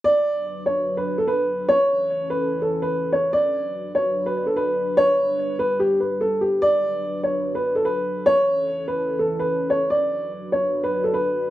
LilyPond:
<<
  \new Staff \with { instrumentName = "Upright piano" } { \time 4/4 \key b \minor \tempo 4 = 146 d''4. cis''8. b'8 a'16 b'4 | cis''4. b'8. a'8 b'8. cis''8 | d''4. cis''8. b'8 a'16 b'4 | cis''4. b'8 g'8 b'8 a'8 g'8 |
d''4. cis''8. b'8 a'16 b'4 | cis''4. b'8. a'8 b'8. cis''8 | d''4. cis''8. b'8 a'16 b'4 | }
  \new Staff \with { instrumentName = "Analog synth pad" } { \time 4/4 \key b \minor << { <d' b'>1 | <cis' a'>1 | <d' b'>1~ | <d' b'>1 |
<d' b'>1 | <cis' a'>1 | <d' b'>1 | } \\ { fis1 | e1 | fis1 | g1 |
fis1 | e1 | fis1 | } >> }
>>